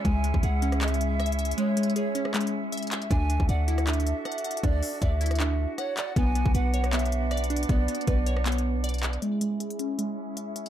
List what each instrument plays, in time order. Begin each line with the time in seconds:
Already playing: synth pluck C#4 E5, flute section C#4 E4 G#4 E5
0.05 808-style bass C#2, synth pluck G#3, pan flute G#5, kick, closed hi-hat
0.24 synth pluck G#3, closed hi-hat
0.34 808-style bass C#2, kick
0.43 808-style bass C#2, synth pluck G#4, pan flute F#5, closed hi-hat
0.62 synth pluck C#4, closed hi-hat
0.72 cross-stick, closed hi-hat
0.81 synth pluck G#3, pan flute E5, clap, closed hi-hat
0.88 closed hi-hat
0.94 closed hi-hat
1.01 closed hi-hat
1.20 synth pluck E5, cross-stick, closed hi-hat
1.26 closed hi-hat
1.32 closed hi-hat
1.39 synth pluck E5, closed hi-hat
1.45 closed hi-hat
1.51 closed hi-hat
1.58 synth pluck G#3, pan flute C#5, closed hi-hat
1.77 synth pluck G#3, closed hi-hat
1.83 closed hi-hat
1.90 closed hi-hat
1.96 synth pluck G#4, pan flute C#5, closed hi-hat
2.15 synth pluck C#4, closed hi-hat
2.25 cross-stick
2.34 synth pluck G#3, clap, closed hi-hat
2.41 closed hi-hat
2.47 closed hi-hat
2.72 synth pluck E5, closed hi-hat
2.77 closed hi-hat
2.83 closed hi-hat
2.87 closed hi-hat
2.92 synth pluck E5, clap, closed hi-hat
3.02 closed hi-hat
3.11 808-style bass D2, flute section D4 F#4 A4, synth pluck D4, pan flute G#5, kick, closed hi-hat
3.30 synth pluck D4, closed hi-hat
3.40 808-style bass C#2, kick
3.49 808-style bass D2, synth pluck D5, pan flute F#5, closed hi-hat
3.68 synth pluck E4, closed hi-hat
3.78 cross-stick, closed hi-hat
3.87 synth pluck D4, pan flute E5, clap, closed hi-hat
3.93 closed hi-hat
4.00 closed hi-hat
4.07 closed hi-hat
4.25 synth pluck F#5, cross-stick, closed hi-hat
4.32 closed hi-hat
4.38 closed hi-hat
4.44 synth pluck F#5, closed hi-hat
4.51 closed hi-hat
4.57 closed hi-hat
4.63 808-style bass D2, synth pluck D4, pan flute D5, kick, closed hi-hat
4.83 synth pluck D4, open hi-hat
5.02 808-style bass D2, synth pluck D5, pan flute E5, kick, closed hi-hat
5.21 synth pluck E4, closed hi-hat
5.26 closed hi-hat
5.31 cross-stick, closed hi-hat
5.35 closed hi-hat
5.40 synth pluck D4, clap, closed hi-hat
5.78 pan flute C#5, synth pluck F#5, cross-stick, closed hi-hat
5.97 pan flute D5, synth pluck F#5, clap, closed hi-hat
6.16 808-style bass B1, synth pluck B3, flute section D4 B4 F#5, pan flute G#5, kick, closed hi-hat
6.35 synth pluck B3, closed hi-hat
6.46 808-style bass B1, kick
6.55 808-style bass B1, synth pluck B4, pan flute F#5, closed hi-hat
6.74 synth pluck C#5, closed hi-hat
6.84 cross-stick, closed hi-hat
6.93 synth pluck B3, pan flute E5, clap, closed hi-hat
6.99 closed hi-hat
7.06 closed hi-hat
7.12 closed hi-hat
7.31 synth pluck D5, cross-stick, closed hi-hat
7.37 closed hi-hat
7.44 closed hi-hat
7.50 synth pluck D4, closed hi-hat
7.56 closed hi-hat
7.63 closed hi-hat
7.69 808-style bass B1, synth pluck B3, pan flute D5, kick, closed hi-hat
7.88 synth pluck B3, closed hi-hat
7.95 closed hi-hat
8.01 closed hi-hat
8.07 808-style bass B1, synth pluck B4, pan flute D5, kick, closed hi-hat
8.26 synth pluck C#5, closed hi-hat
8.37 cross-stick
8.46 synth pluck B3, clap, closed hi-hat
8.52 closed hi-hat
8.58 closed hi-hat
8.84 synth pluck D5, closed hi-hat
8.89 closed hi-hat
8.94 closed hi-hat
8.98 closed hi-hat
9.03 synth pluck D5, clap, closed hi-hat
9.13 closed hi-hat
9.22 synth pluck G#3, flute section C#4 E4 G#4 E5, closed hi-hat
9.41 synth pluck G#3, closed hi-hat
9.60 synth pluck G#4, closed hi-hat
9.70 closed hi-hat
9.79 synth pluck C#4, closed hi-hat
9.98 synth pluck G#3, closed hi-hat
10.37 synth pluck E5, closed hi-hat
10.56 synth pluck E5, closed hi-hat
10.66 closed hi-hat